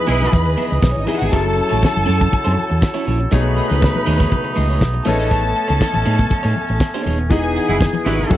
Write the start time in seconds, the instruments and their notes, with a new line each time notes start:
Already playing: grand piano E3 B3 D#4 G#4, woodwind section E3 G#4 D#5, string section B4 B5
0.07 fingered electric bass B1, clean electric guitar B3 E4 G#4 D#5, horn section E4 G#4 B4, closed hi-hat, shaker
0.20 clean electric guitar B3 E4 G#4 D#5, snare, closed hi-hat, low conga, shaker
0.32 fingered electric bass E2, muted clean electric guitar stroke, kick, closed hi-hat, muted conga, high conga, low conga, shaker
0.46 fingered electric bass D#2, muted clean electric guitar stroke, closed hi-hat, muted conga, shaker
0.57 clean electric guitar B3 E4 G#4 E5, closed hi-hat, high conga, shaker
0.70 fingered electric bass C#2, clean electric guitar B3 E4 G#4 D#5, closed hi-hat, shaker
0.82 fingered electric bass B1, string section B3 B4, muted clean electric guitar stroke, kick, snare, muted conga, shaker
0.91 string section C#4 C#5, muted clean electric guitar stroke
0.96 fingered electric bass G#1, string section D#4 D#5, muted conga, shaker
1.06 grand piano E3 B3 D#4 G#4, clean electric guitar B3 E4 G#4 D#5, string section E4 E5, open hi-hat, high conga
1.16 string section F#4 F#5
1.20 fingered electric bass G#1, clean electric guitar B3 E4 G#4 E5, string section G#4 G#5, closed hi-hat, shaker
1.32 fingered electric bass F#1, grand piano F#3 C#4 E4 G#4, woodwind section F#3 E4 A4, clean electric guitar C#4 E4 A4 C#5, string section A4 A5, kick, closed hi-hat, shaker
1.41 grand piano A4
1.46 muted clean electric guitar stroke, muted conga, shaker
1.56 muted clean electric guitar stroke, closed hi-hat, shaker
1.70 fingered electric bass A1, clean electric guitar C#4 E4 A4 C#5, closed hi-hat, high conga, shaker
1.83 kick, snare, high conga, shaker
1.94 fingered electric bass F#1, muted clean electric guitar stroke, closed hi-hat, muted conga, high conga, shaker
2.06 fingered electric bass F#2, clean electric guitar C#4 E4 A4 C#5, closed hi-hat, shaker
2.19 muted clean electric guitar stroke, kick, closed hi-hat, low conga, shaker
2.31 muted clean electric guitar stroke, muted fingered electric bass stroke, kick, closed hi-hat, high conga, low conga, shaker
2.44 fingered electric bass F#2, clean electric guitar C#4 E4 A4 C#5, shaker
2.56 muted clean electric guitar stroke, closed hi-hat, high conga, shaker
2.70 fingered electric bass E2, muted clean electric guitar stroke, closed hi-hat, shaker
2.81 muted clean electric guitar stroke, kick, snare, shaker
2.94 clean electric guitar C#4 E4 A4 C#5, closed hi-hat, muted conga, shaker
3.06 fingered electric bass A#1, clean electric guitar C#4 E4 A4 C#5, open hi-hat, high conga
3.20 muted clean electric guitar stroke, closed hi-hat, shaker
3.31 fingered electric bass B1, grand piano B2 A3 D#4 G#4 C#5, clean electric guitar A3 D#4 G#4 C#5, woodwind section A3 B3 D#4, string section B4 B5, kick, closed hi-hat, muted conga, shaker
3.45 muted clean electric guitar stroke, muted conga, shaker
3.57 clean electric guitar A3 D#4 G#4 D#5, closed hi-hat, shaker
3.69 fingered electric bass C#2, clean electric guitar A3 D#4 G#4 D#5, closed hi-hat, high conga, shaker
3.82 muted clean electric guitar stroke, kick, snare, muted conga, high conga, shaker
3.95 muted clean electric guitar stroke, closed hi-hat, muted conga, high conga, shaker
4.06 fingered electric bass D#2, clean electric guitar A3 D#4 G#4 C#5, closed hi-hat, shaker
4.19 clean electric guitar A3 D#4 G#4 C#5, kick, snare, closed hi-hat, low conga, shaker
4.32 muted clean electric guitar stroke, kick, closed hi-hat, high conga, low conga, shaker
4.44 muted clean electric guitar stroke, closed hi-hat, shaker
4.56 fingered electric bass C#2, clean electric guitar A3 D#4 G#4 D#5, closed hi-hat, high conga, shaker
4.69 clean electric guitar A3 D#4 G#4 C#5, closed hi-hat, shaker
4.81 fingered electric bass B1, muted clean electric guitar stroke, kick, snare, muted conga, shaker
4.94 muted clean electric guitar stroke, closed hi-hat, muted conga, shaker
5.05 fingered electric bass A1, grand piano A3 A4 B4 C#5 D#5, woodwind section A3 B3 C#4, clean electric guitar B3 D#4 G#4 C#5, string section A4 A5, open hi-hat, high conga
5.19 clean electric guitar B3 D#4 G#4 D#5, closed hi-hat, shaker
5.31 clean electric guitar B3 D#4 G#4 C#5, kick, closed hi-hat, muted conga, shaker
5.44 muted clean electric guitar stroke, closed hi-hat, muted conga, shaker
5.55 muted clean electric guitar stroke, closed hi-hat, shaker
5.68 fingered electric bass C#2, clean electric guitar B3 D#4 G#4 C#5, closed hi-hat, high conga, shaker
5.81 kick, snare, muted conga, high conga, shaker
5.94 fingered electric bass A1, muted clean electric guitar stroke, muted conga, high conga, shaker
6.06 fingered electric bass A2, clean electric guitar B3 D#4 G#4 C#5, closed hi-hat, shaker
6.18 muted clean electric guitar stroke, kick, closed hi-hat, low conga, shaker
6.30 muted fingered electric bass stroke, muted clean electric guitar stroke, kick, closed hi-hat, high conga, low conga, shaker
6.43 fingered electric bass A2, clean electric guitar B3 D#4 G#4 C#5, closed hi-hat, shaker
6.56 muted clean electric guitar stroke, closed hi-hat, high conga, shaker
6.68 fingered electric bass A1, muted clean electric guitar stroke, closed hi-hat, shaker
6.80 muted clean electric guitar stroke, kick, snare, muted conga, shaker
6.94 clean electric guitar B3 D#4 G#4 C#5, muted conga, shaker
7.06 fingered electric bass D#1, clean electric guitar B3 D#4 G#4 C#5, open hi-hat, high conga
7.18 muted clean electric guitar stroke, closed hi-hat, shaker
7.30 fingered electric bass E1, grand piano E3 B3 D#4 G#4, woodwind section E3 D#4 G#4, clean electric guitar D#4 G#4 B4 D#5, string section G#4 G#5, kick, closed hi-hat, muted conga, shaker
7.45 muted clean electric guitar stroke, shaker
7.55 clean electric guitar D#4 G#4 B4 F#5, closed hi-hat, shaker
7.68 fingered electric bass F#1, clean electric guitar D#4 G#4 B4 F#5, horn section E4 G#4 B4, closed hi-hat, high conga, shaker
7.80 kick, snare, shaker
7.93 muted clean electric guitar stroke, muted conga, high conga, shaker
8.05 fingered electric bass G#1, clean electric guitar D#4 G#4 B4 D#5, horn section E4 F#4 B4, closed hi-hat, shaker
8.18 clean electric guitar D#4 G#4 B4 D#5, closed hi-hat, low conga, shaker
8.29 fingered electric bass F#1, grand piano F#3 C#4 E4 A4, woodwind section F#3 E4 A4, string section F#4 F#5, muted clean electric guitar stroke, kick, closed hi-hat, high conga, low conga, shaker